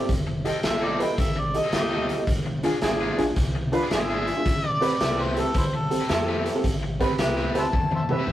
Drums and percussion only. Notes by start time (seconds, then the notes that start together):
0.09 kick, closed hi-hat
0.45 closed hi-hat
0.63 snare, closed hi-hat
1.00 closed hi-hat
1.18 kick, closed hi-hat
1.54 closed hi-hat
1.72 snare, closed hi-hat
2.09 closed hi-hat
2.27 kick, closed hi-hat
2.63 closed hi-hat
2.81 snare, closed hi-hat
3.18 closed hi-hat
3.36 kick, snare, closed hi-hat
3.73 closed hi-hat
3.91 snare, closed hi-hat
4.27 closed hi-hat
4.46 kick, closed hi-hat
4.82 closed hi-hat
5.00 snare, closed hi-hat
5.37 closed hi-hat
5.54 kick, closed hi-hat
5.91 closed hi-hat
6.09 snare, closed hi-hat
6.46 closed hi-hat
6.64 kick, closed hi-hat
7.00 kick, closed hi-hat
7.18 snare, closed hi-hat
7.55 closed hi-hat
7.73 kick, high tom
7.91 high tom
8.09 mid tom
8.27 mid tom